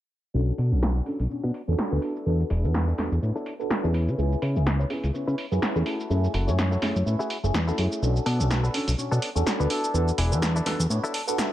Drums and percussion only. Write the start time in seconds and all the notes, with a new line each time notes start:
0.35 shaker
0.48 shaker
0.58 open hi-hat
0.72 shaker
0.83 snare, shaker
0.96 shaker
1.06 open hi-hat
1.20 open hi-hat, shaker
1.31 shaker
1.44 shaker
1.54 open hi-hat
1.68 shaker
1.79 snare, shaker
1.92 shaker
2.02 open hi-hat
2.16 shaker
2.27 shaker
2.40 shaker
2.50 open hi-hat
2.64 shaker
2.74 snare, shaker
2.88 shaker
2.98 snare, open hi-hat
3.12 shaker
3.23 shaker
3.36 shaker
3.46 open hi-hat
3.60 shaker
3.70 snare, shaker
3.84 shaker
3.94 open hi-hat
4.08 shaker
4.19 shaker
4.32 shaker
4.42 open hi-hat
4.56 shaker
4.67 snare, shaker
4.80 shaker
4.90 open hi-hat
5.04 open hi-hat, shaker
5.15 shaker
5.28 shaker
5.38 open hi-hat
5.52 shaker
5.62 snare, shaker
5.76 shaker
5.86 open hi-hat
6.00 shaker
6.11 shaker
6.24 shaker
6.34 open hi-hat
6.48 shaker
6.59 snare, shaker
6.72 shaker
6.82 snare, open hi-hat
6.96 shaker
7.07 shaker
7.20 shaker
7.30 open hi-hat
7.44 shaker
7.54 snare, shaker
7.68 shaker
7.78 open hi-hat
7.92 shaker
8.03 shaker
8.16 shaker
8.26 open hi-hat
8.40 shaker
8.51 snare, shaker
8.64 shaker
8.74 open hi-hat
8.88 open hi-hat, shaker
8.99 shaker
9.12 shaker
9.22 open hi-hat
9.36 shaker
9.47 snare, shaker
9.60 shaker
9.70 open hi-hat
9.84 shaker
9.95 shaker
10.08 shaker
10.18 open hi-hat
10.32 shaker
10.42 snare, shaker
10.56 shaker
10.66 snare, open hi-hat
10.80 shaker
10.91 shaker
11.04 shaker
11.14 open hi-hat
11.28 shaker
11.38 snare, shaker